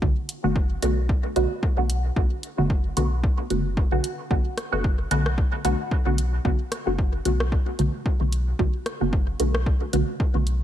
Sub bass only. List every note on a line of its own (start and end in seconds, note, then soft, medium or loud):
0.02 0.13 B1 loud
0.44 0.77 F#1 medium
0.83 1.17 B1 medium
1.36 1.47 B1 medium
1.78 2.11 B1 medium
2.16 2.27 B1 loud
2.58 2.91 F#1 medium
2.97 3.32 B1 medium
3.50 3.85 F#1 medium
3.92 4.01 B1 medium
4.31 4.41 B1 loud
4.72 5.06 F#1 medium
5.11 5.46 B1 medium
5.65 5.75 B1 medium
6.06 6.40 B1 loud
6.45 6.56 B1 loud
6.87 7.20 F#1 medium
7.25 7.60 B1 medium
7.79 7.90 B1 medium
8.21 8.54 B1 medium
8.59 8.70 B1 loud
9.01 9.34 F#1 medium
9.40 9.74 B1 medium
9.93 10.04 B1 medium
10.35 10.63 B1 medium